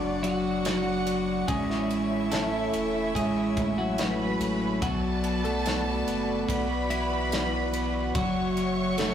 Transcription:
0.00 1.44 F#1 medium
0.00 0.02 F#3 medium
0.00 0.21 F#3 medium
0.00 0.20 D4 medium
0.00 1.44 D4 medium
0.00 1.44 F#4 medium
0.00 0.20 D5 medium
0.00 1.45 D5 medium
0.00 1.44 F#5 medium
0.00 4.77 C#6 medium
0.22 0.42 F#3 medium
0.22 1.45 F#3 medium
0.22 1.48 F#4 medium
0.22 1.46 F#4 medium
0.22 1.46 F#5 medium
0.22 ride medium
0.43 0.63 F#3 medium
0.64 0.84 F#3 medium
0.64 snare loud
0.64 ride medium
0.85 1.05 F#3 medium
1.06 1.25 F#3 medium
1.06 ride medium
1.27 1.47 F#3 medium
1.47 2.69 A1 medium
1.47 2.28 G#3 medium
1.47 4.77 C#4 medium
1.47 3.95 E4 medium
1.47 2.27 G#4 medium
1.47 4.79 C#5 medium
1.47 4.78 E5 medium
1.47 3.95 E5 medium
1.47 4.78 G#5 medium
1.47 kick loud
1.47 ride medium
1.70 2.10 E4 medium
1.70 snare soft
1.90 3.52 E3 medium
1.90 ride soft
2.11 2.51 E4 medium
2.32 3.12 A3 medium
2.32 3.15 A4 medium
2.32 snare loud
2.32 ride medium
2.53 2.94 E4 medium
2.74 3.17 E1 medium
2.74 ride medium
2.95 3.35 E4 medium
3.15 4.36 A1 medium
3.15 4.78 G#3 medium
3.15 3.74 G#3 medium
3.15 3.74 G#4 medium
3.15 kick medium
3.15 ride medium
3.36 3.77 E4 medium
3.57 3.98 A3 soft
3.57 kick medium
3.57 ride medium
3.78 4.79 F#3 medium
3.78 4.18 E4 medium
3.78 4.81 F#4 medium
3.98 4.39 A3 medium
3.98 4.80 B4 medium
3.98 4.80 B5 medium
3.98 snare medium
3.98 ride medium
4.19 4.60 E4 medium
4.40 4.83 A1 medium
4.40 4.81 A3 medium
4.40 ride medium
4.61 4.81 E4 medium
4.82 6.03 B1 loud
4.82 5.41 F#3 medium
4.82 5.23 B3 medium
4.82 9.14 F#4 medium
4.82 5.41 F#4 medium
4.82 6.45 A4 medium
4.82 8.12 D5 medium
4.82 9.14 F#5 medium
4.82 6.45 A5 medium
4.82 8.12 B5 medium
4.82 kick loud
4.82 ride medium
5.04 5.44 F#4 soft
5.24 5.64 B3 medium
5.24 ride soft
5.44 6.66 A3 medium
5.44 5.86 F#4 medium
5.44 6.65 A4 medium
5.44 ride soft
5.66 6.06 B3 medium
5.66 snare medium
5.66 ride medium
5.87 6.27 F#4 soft
6.07 6.45 F#1 medium
6.07 6.47 B3 medium
6.07 ride medium
6.28 6.69 F#4 medium
6.48 8.11 B1 loud
6.48 6.89 B3 medium
6.48 8.12 B4 medium
6.48 8.12 B5 medium
6.48 kick medium
6.48 ride medium
6.70 7.10 F#4 medium
6.90 8.12 E3 medium
6.90 7.30 B3 soft
6.90 8.19 E4 medium
6.90 ride medium
7.11 7.50 F#4 medium
7.31 7.72 B3 medium
7.31 snare loud
7.31 ride medium
7.52 7.93 F#4 medium
7.73 8.13 B3 medium
7.73 ride medium
7.94 8.14 F#4 medium
8.15 9.14 F#1 loud
8.15 8.34 F#3 medium
8.15 8.95 F#3 medium
8.15 8.94 F#4 medium
8.15 9.14 C#5 medium
8.15 9.14 E5 medium
8.15 9.14 C#6 medium
8.15 kick loud
8.15 ride medium
8.36 8.55 F#3 soft
8.57 8.75 F#3 medium
8.57 ride medium
8.77 8.96 F#3 medium
8.98 9.14 F#3 medium
8.98 9.14 A3 medium
8.98 9.14 A4 medium
8.98 snare loud
8.98 ride medium

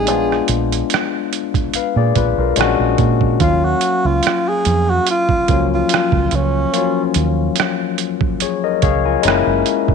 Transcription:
0.00 0.50 G#4 medium
0.06 0.40 A#1 medium
0.06 1.39 G#3 medium
0.06 1.39 B3 medium
0.06 1.40 D4 medium
0.06 closed hi-hat medium
0.10 1.34 F4 medium
0.32 cross-stick soft
0.48 0.81 A#1 medium
0.48 closed hi-hat medium
0.72 closed hi-hat soft
0.90 closed hi-hat medium
0.94 cross-stick medium
1.33 closed hi-hat medium
1.54 kick medium
1.54 closed hi-hat soft
1.74 1.96 B4 soft
1.74 1.96 F5 medium
1.74 closed hi-hat medium
1.96 2.11 A#2 medium
1.96 2.16 G#4 medium
1.96 2.15 D5 medium
2.15 2.33 A#1 medium
2.15 2.38 F4 soft
2.15 2.37 B4 medium
2.15 kick medium
2.15 closed hi-hat medium
2.38 2.53 B1 medium
2.38 2.79 F4 soft
2.38 2.78 A#4 medium
2.56 2.74 A#1 medium
2.56 3.24 G#3 medium
2.56 3.25 C#4 medium
2.56 3.26 D4 medium
2.56 3.26 F#4 medium
2.56 closed hi-hat medium
2.61 cross-stick loud
2.79 2.95 A#1 medium
2.98 3.42 A#2 medium
2.98 kick medium
2.98 closed hi-hat soft
3.21 kick medium
3.40 3.73 D#2 medium
3.40 3.47 F3 soft
3.40 4.73 A#3 medium
3.40 4.74 C#4 medium
3.40 3.66 F4 medium
3.40 4.74 F5 medium
3.40 kick medium
3.40 closed hi-hat medium
3.46 4.76 F#3 medium
3.65 4.08 F#4 medium
3.81 closed hi-hat medium
4.05 4.20 C#2 medium
4.05 4.50 F4 medium
4.23 closed hi-hat medium
4.27 cross-stick medium
4.48 4.92 G#4 medium
4.65 4.98 F2 medium
4.65 closed hi-hat medium
4.90 5.08 F#4 medium
5.07 5.69 F4 medium
5.07 closed hi-hat medium
5.29 kick medium
5.47 5.82 C#2 medium
5.47 5.55 F3 soft
5.47 6.49 A#3 medium
5.47 6.49 C#4 medium
5.47 6.50 F4 medium
5.47 kick medium
5.47 closed hi-hat medium
5.53 6.51 F#3 medium
5.74 6.36 F4 medium
5.89 closed hi-hat medium
5.94 cross-stick loud
6.12 6.28 C#2 medium
6.12 kick medium
6.31 6.65 C#2 medium
6.31 7.17 C#4 medium
6.31 closed hi-hat medium
6.72 6.80 F3 soft
6.72 8.06 A#3 medium
6.72 8.06 C#4 medium
6.72 closed hi-hat medium
6.76 8.08 F#3 medium
6.76 8.07 F4 medium
7.14 7.48 D#2 medium
7.14 closed hi-hat medium
7.56 closed hi-hat medium
7.60 cross-stick medium
7.98 closed hi-hat medium
8.21 kick medium
8.40 8.63 G#4 soft
8.40 8.62 C#5 medium
8.40 closed hi-hat medium
8.64 8.82 A#4 medium
8.64 8.82 D#5 medium
8.82 9.15 C#2 medium
8.82 9.04 G#4 medium
8.82 9.04 C#5 medium
8.82 9.04 F5 medium
8.82 kick medium
8.82 closed hi-hat medium
9.05 9.45 F4 soft
9.05 9.45 A#4 medium
9.05 9.23 G#5 medium
9.22 9.42 F#1 medium
9.22 9.91 G#3 medium
9.22 9.30 A3 medium
9.22 9.92 C#4 medium
9.22 9.93 E4 medium
9.22 9.95 A#5 medium
9.22 closed hi-hat medium
9.28 9.95 A#3 medium
9.28 cross-stick loud
9.47 9.62 F#1 medium
9.66 closed hi-hat medium
9.88 9.95 F#1 medium
9.88 kick medium

